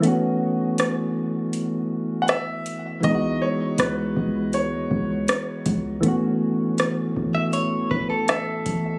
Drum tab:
HH |x-x-x-xx|x-x-x-xx|x-x-x-xx|
SD |--r---r-|--r---r-|--r---r-|
BD |--------|o--o-o-o|o--o-o-o|